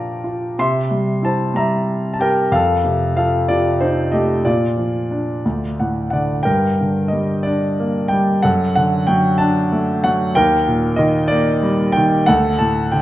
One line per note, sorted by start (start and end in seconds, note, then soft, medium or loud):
0.00 0.54 A#2 soft
0.00 0.59 F3 soft
0.00 0.54 D4 soft
0.00 0.60 A#4 soft
0.00 0.60 C5 soft
0.00 0.59 D5 soft
0.00 0.54 F5 medium
0.00 0.59 G5 medium
0.00 0.59 A5 medium
0.00 0.59 A#5 medium
0.00 0.61 D6 medium
0.24 0.57 F4 soft
0.59 2.49 C3 medium
0.59 1.20 E5 medium
0.59 1.20 C6 medium
0.91 1.52 G3 soft
1.23 2.48 E4 soft
1.23 1.54 C5 soft
1.23 1.57 A5 medium
1.54 2.49 G3 soft
1.54 2.10 E5 medium
1.54 2.15 A#5 medium
2.14 2.20 A5 medium
2.20 2.51 G4 soft
2.20 2.51 A#4 medium
2.20 2.54 G5 medium
2.52 4.41 F2 medium
2.52 3.15 A4 medium
2.52 3.15 F5 medium
2.84 3.48 C3 soft
3.16 4.41 F3 soft
3.16 3.48 A4 medium
3.16 3.50 F5 medium
3.48 4.43 C3 soft
3.48 3.80 F4 medium
3.48 3.82 D5 medium
3.80 4.12 D#4 soft
3.80 4.14 C5 medium
4.12 4.44 A3 soft
4.12 4.43 G4 soft
4.12 4.46 D#5 medium
4.45 5.41 A#2 medium
4.45 5.75 F4 medium
4.45 5.74 D5 medium
4.77 5.42 F3 soft
5.11 5.44 D4 soft
5.45 6.43 D2 soft
5.80 6.44 A2 soft
5.80 6.09 F#5 soft
6.10 6.45 D3 soft
6.10 6.44 D5 soft
6.10 6.46 F#5 soft
6.43 8.40 G2 soft
6.43 7.41 A#4 medium
6.43 7.13 G5 medium
6.81 8.08 D3 soft
7.08 7.44 D#5 medium
7.13 8.10 G3 soft
7.43 8.41 D4 soft
7.43 8.12 D5 medium
7.80 8.43 A#3 soft
8.08 8.43 G3 soft
8.08 8.43 G5 medium
8.43 10.31 F#2 medium
8.43 9.36 A4 medium
8.43 8.74 F#5 medium
8.75 10.00 D3 soft
8.75 9.09 F#5 medium
9.07 10.03 F#3 soft
9.07 9.40 G5 medium
9.38 10.32 D4 medium
9.38 10.04 A5 medium
9.72 10.33 A3 soft
10.04 10.34 F#3 soft
10.04 10.36 F#5 medium
10.35 12.24 D#2 medium
10.35 11.27 A#4 medium
10.35 11.00 G5 medium
10.68 11.92 A#2 medium
10.96 11.96 D#3 medium
10.96 11.30 D#5 medium
11.28 12.25 A#3 medium
11.28 11.96 D5 medium
11.63 12.26 G3 medium
11.92 12.27 G5 medium
11.97 12.28 D#3 medium
12.26 13.02 D2 medium
12.26 13.02 A4 medium
12.26 12.60 F#5 medium
12.59 13.02 A2 soft
12.59 12.90 A5 medium
12.92 13.02 D3 soft
12.92 13.02 G5 medium